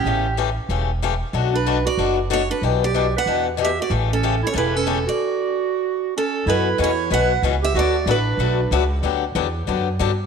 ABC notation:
X:1
M:4/4
L:1/16
Q:"Swing" 1/4=187
K:Amix
V:1 name="Steel-string acoustic guitar"
G4 z12 | z2 B4 d4 z2 c2 B2 | z2 d4 f4 z2 e2 d2 | z2 A4 c3/2 A/2 B2 A4 d2- |
d12 A4 | B4 c4 f4 z2 e2 | d4 B8- B2 z2 | z16 |]
V:2 name="Clarinet"
C4 z12 | z2 D4 F4 z2 F2 D2 | z2 G4 B4 z2 G2 F2 | z2 C4 E3/2 C/2 E2 C4 F2- |
F12 C4 | E4 E4 B4 z2 G2 | F4 D8- D2 z2 | z16 |]
V:3 name="Steel-string acoustic guitar"
[C,E,A,CG]2 z2 [C,E,A,CG]2 z2 [C,E,A,CG]2 z2 [C,E,A,CG]2 z2 | [B,,F,A,DF]2 z2 [B,,F,A,DF]2 z2 [B,,F,A,DF]2 z2 [B,,F,A,DF]2 z2 | [B,,E,B,DG]2 z2 [B,,E,B,DG]2 z2 [B,,E,B,DG]2 z2 [B,,E,B,DG]2 z2 | [C,E,A,CG]2 z2 [C,E,A,CG]2 z2 [C,E,A,CG]2 z2 [C,E,A,CG]2 z2 |
z16 | [B,,E,B,CF]2 z2 [B,,E,B,CF]2 z2 [B,,E,B,CF]2 z2 [B,,E,B,CF]2 z2 | [D,F,A,DFB]2 z2 [D,F,A,DFB]2 z2 [D,F,A,DFB]2 z2 [D,F,A,DFB]2 z2 | [D,F,B,DG]2 z2 [D,F,B,DG]2 z2 [D,F,B,DG]2 z2 [D,F,B,DG]2 z2 |]
V:4 name="Upright bass" clef=bass
A,,,8 E,,,8 | B,,,8 F,,,8 | B,,,8 E,,8 | A,,,8 E,,,8 |
z16 | F,,4 E,,4 B,,,4 C,,4 | D,,4 A,,,4 B,,,4 C,,4 | D,,4 E,,4 F,,4 G,,4 |]